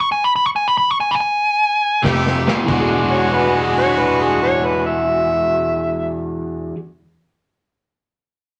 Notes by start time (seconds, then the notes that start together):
0.12 G#5
0.24 B5
0.36 B5
0.46 C#6
0.56 G#5
0.68 B5
0.78 B5
0.91 C#6
1.00 G#5
1.11 B5
1.20 G#5
2.02 F1 F2 C3 A3 D#4 G4, kick, snare
2.26 snare
2.47 F2 C3, snare
2.55 E2
2.61 E3
2.66 E1 E3 G#3 D4 F#4, kick, crash
2.71 F#4
2.80 G#4
3.10 C#5
3.32 B4
3.40 D5
3.48 F#5
3.55 G#4 B5
3.67 D6
3.78 C#5 F#6
3.89 B6
3.99 B4 D7
4.21 G#4
4.43 C#5
4.65 B4
4.87 E5